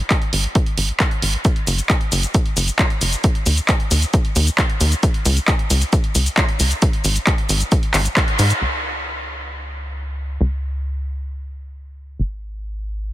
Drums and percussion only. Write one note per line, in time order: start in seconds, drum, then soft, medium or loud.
0.10 kick loud
0.10 clap loud
0.10 closed hi-hat medium
0.22 closed hi-hat soft
0.33 open hi-hat loud
0.44 closed hi-hat soft
0.55 kick loud
0.55 closed hi-hat medium
0.66 closed hi-hat soft
0.77 open hi-hat loud
0.89 closed hi-hat soft
1.00 kick loud
1.00 clap loud
1.00 closed hi-hat medium
1.11 closed hi-hat soft
1.22 open hi-hat loud
1.34 closed hi-hat soft
1.45 kick loud
1.45 closed hi-hat medium
1.45 shaker soft
1.56 closed hi-hat soft
1.67 open hi-hat loud
1.67 shaker medium
1.78 closed hi-hat soft
1.78 shaker soft
1.90 kick loud
1.90 clap loud
1.90 closed hi-hat medium
1.90 shaker soft
2.01 closed hi-hat soft
2.12 open hi-hat loud
2.12 shaker medium
2.23 closed hi-hat soft
2.23 shaker soft
2.34 kick loud
2.34 closed hi-hat medium
2.34 shaker soft
2.46 closed hi-hat soft
2.57 open hi-hat loud
2.57 shaker medium
2.68 closed hi-hat soft
2.68 shaker soft
2.79 kick loud
2.79 clap loud
2.79 closed hi-hat medium
2.79 shaker soft
2.90 closed hi-hat soft
3.01 open hi-hat loud
3.01 shaker medium
3.13 closed hi-hat soft
3.13 shaker soft
3.24 kick loud
3.24 closed hi-hat medium
3.24 shaker soft
3.35 closed hi-hat soft
3.46 open hi-hat loud
3.46 shaker medium
3.57 closed hi-hat soft
3.57 shaker soft
3.69 kick loud
3.69 clap loud
3.69 closed hi-hat medium
3.69 shaker soft
3.80 closed hi-hat soft
3.91 open hi-hat medium
3.91 shaker medium
4.02 closed hi-hat soft
4.02 shaker soft
4.14 kick loud
4.14 closed hi-hat medium
4.14 shaker soft
4.25 closed hi-hat soft
4.36 open hi-hat loud
4.36 shaker medium
4.47 closed hi-hat soft
4.47 shaker soft
4.58 kick loud
4.58 clap loud
4.58 closed hi-hat medium
4.58 shaker soft
4.70 closed hi-hat soft
4.81 open hi-hat medium
4.81 shaker medium
4.92 closed hi-hat soft
4.92 shaker soft
5.03 kick loud
5.03 closed hi-hat medium
5.03 shaker soft
5.14 closed hi-hat soft
5.25 open hi-hat loud
5.25 shaker medium
5.37 closed hi-hat soft
5.37 shaker soft
5.48 kick loud
5.48 clap loud
5.48 closed hi-hat medium
5.48 shaker soft
5.59 closed hi-hat soft
5.70 open hi-hat medium
5.70 shaker medium
5.81 closed hi-hat soft
5.81 shaker soft
5.93 kick loud
5.93 closed hi-hat medium
5.93 shaker soft
6.04 closed hi-hat soft
6.15 open hi-hat loud
6.15 shaker medium
6.26 closed hi-hat soft
6.26 shaker soft
6.37 kick loud
6.37 clap loud
6.37 closed hi-hat medium
6.37 shaker soft
6.49 closed hi-hat soft
6.60 open hi-hat medium
6.60 shaker medium
6.71 closed hi-hat soft
6.71 shaker soft
6.82 kick loud
6.82 closed hi-hat medium
6.82 shaker soft
6.93 closed hi-hat soft
7.04 open hi-hat loud
7.04 shaker medium
7.16 closed hi-hat soft
7.16 shaker soft
7.27 kick loud
7.27 clap loud
7.27 closed hi-hat medium
7.27 shaker soft
7.38 closed hi-hat soft
7.49 open hi-hat loud
7.49 shaker medium
7.61 closed hi-hat soft
7.61 shaker soft
7.72 kick loud
7.72 closed hi-hat medium
7.72 shaker soft
7.83 closed hi-hat soft
7.94 clap medium
7.94 open hi-hat loud
7.94 shaker medium
8.05 closed hi-hat soft
8.05 shaker soft
8.17 kick loud
8.17 clap loud
8.17 closed hi-hat medium
8.17 shaker soft
8.28 closed hi-hat soft
8.39 open hi-hat loud
8.39 shaker medium
8.50 closed hi-hat soft
8.50 shaker soft